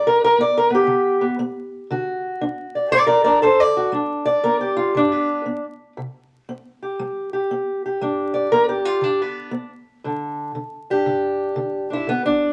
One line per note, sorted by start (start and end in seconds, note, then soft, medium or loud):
0.00 0.34 G3 medium
0.07 0.23 A#4 loud
0.24 0.40 A#4 loud
0.38 0.69 B3 medium
0.38 0.56 D5 loud
0.57 0.73 A#4 medium
0.70 1.20 B3 medium
0.75 1.24 G4 medium
0.87 1.35 D3 medium
1.21 1.38 B3 medium
1.39 1.86 B3 medium
1.90 2.37 D3 medium
1.90 2.91 F#4 medium
2.41 2.88 D4 medium
2.75 2.91 D5 soft
2.91 3.39 A2 medium
2.91 3.05 A#4 loud
2.91 3.06 D5 loud
3.07 3.23 A#4 medium
3.07 3.23 D5 loud
3.24 3.42 D4 medium
3.24 3.41 A#4 medium
3.24 3.42 D5 loud
3.42 3.89 D4 medium
3.42 3.59 A4 medium
3.42 3.60 C5 loud
3.60 3.93 D5 loud
3.77 3.91 F#4 medium
3.92 4.39 G3 medium
3.92 4.76 D4 soft
4.26 4.94 D5 loud
4.44 4.91 B3 medium
4.44 4.60 A#4 medium
4.61 5.12 G4 medium
4.77 4.94 F4 medium
4.94 5.41 D3 medium
4.94 5.63 D4 medium
5.12 5.45 B3 medium
5.46 5.92 B3 medium
5.97 6.44 C3 medium
6.49 6.95 C4 medium
6.82 7.33 G4 soft
6.99 7.46 G3 medium
7.33 7.85 G4 soft
7.51 7.97 C4 medium
7.86 8.51 G4 soft
8.01 8.47 G3 medium
8.01 8.85 D4 medium
8.34 9.01 D5 medium
8.52 8.98 B3 medium
8.52 8.68 A#4 loud
8.69 9.22 G4 medium
8.85 9.04 F4 medium
9.01 9.48 D3 medium
9.01 9.70 D4 medium
9.22 9.50 B3 loud
9.51 9.99 B3 medium
10.04 10.51 G2 medium
10.04 10.54 D3 soft
10.55 11.01 D3 medium
10.90 11.89 D4 soft
10.90 11.91 G4 medium
11.06 11.52 D3 medium
11.56 12.03 D3 medium
11.90 12.05 D4 soft
11.90 12.08 E4 medium
12.07 12.53 D3 medium
12.07 12.24 B3 loud
12.26 12.53 D4 medium